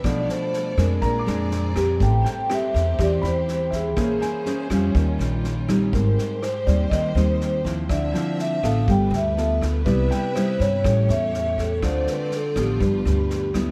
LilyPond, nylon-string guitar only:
\new Staff \with { instrumentName = "Nylon-string guitar" } { \time 4/4 \key a \minor \tempo 4 = 122 << { <f a d'>4. <aes c' d'>4 <aes c' d'>4 <c' g' b'>8~ | <c' g' b'>4 <c' g' b'>4 <c' g'>2 | <des' aes' c''>8 r8 <des' aes' c''>8 <g des' f'>2 <g c' ees'>8~ | <g c' ees'>4 r8 <g c' ees'>4 <g c' ees'>4 <f c' e'>8~ |
<f c' e'>8 <f c' e'>4 <b f' a'>4. <b f' a'>4 | <g b e'>4 <g b e'>8 r8 <g cis' e'>2 | <a c' f'>4 r8 <f b d'>2 <g b e'>8 | } \\ { b,2 bes,2 | a2 e2 | bes2 ees2 | aes,2 ees2 |
d2 g2 | c2 a,2 | d2 g,2 | } >> }